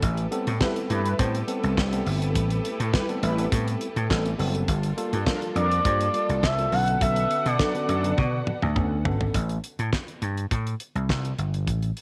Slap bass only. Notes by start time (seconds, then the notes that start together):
0.03 A1
0.47 A2
0.90 G2
1.19 A2
1.64 C2
1.77 C2
2.06 G1
2.35 A1
2.80 A2
3.23 A1
3.52 A2
3.96 A2
4.10 A1
4.39 F#1
4.68 G1
5.13 G2
5.56 F2
5.85 G2
6.29 C2
6.43 C2
6.72 B1
7.01 B1
7.46 B2
7.89 F#2
8.18 B2
8.63 D2
8.76 D2
9.05 G#1
9.34 A1
9.79 A2
10.22 G2
10.51 A2
10.95 C2
11.09 C2
11.38 G1
11.68 A1